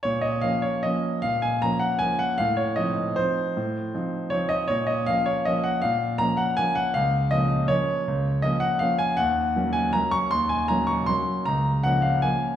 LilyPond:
<<
  \new Staff \with { instrumentName = "Grand piano" } { \time 3/4 \key bes \minor \tempo 4 = 157 des''8 ees''8 f''8 des''8 ees''4 | f''8 aes''8 bes''8 ges''8 aes''8 ges''8 | f''8 des''8 ees''4 c''4~ | c''2 des''8 ees''8 |
des''8 ees''8 f''8 des''8 ees''8 ges''8 | f''4 bes''8 ges''8 aes''8 ges''8 | f''4 ees''4 des''4~ | des''4 ees''8 ges''8 f''8 aes''8 |
ges''4. aes''8 bes''8 des'''8 | c'''8 aes''8 bes''8 des'''8 c'''4 | bes''4 ges''8 f''8 aes''4 | }
  \new Staff \with { instrumentName = "Grand piano" } { \time 3/4 \key bes \minor bes,4 <f bes des'>4 <f bes des'>4 | bes,4 <f bes des'>4 <f bes des'>4 | a,4 <f c' ees'>4 <f c' ees'>4 | a,4 <f c' ees'>4 <f c' ees'>4 |
bes,4 <f bes des'>4 <f bes des'>4 | bes,4 <f bes des'>4 <f bes des'>4 | des,4 <f bes des'>4 <f bes des'>4 | des,4 <f bes des'>4 <f bes des'>4 |
ees,4 <ges bes des'>4 <ges bes des'>4 | ees,4 <ges bes des'>4 <ges bes des'>4 | des,4 <f bes des'>4 <f bes des'>4 | }
>>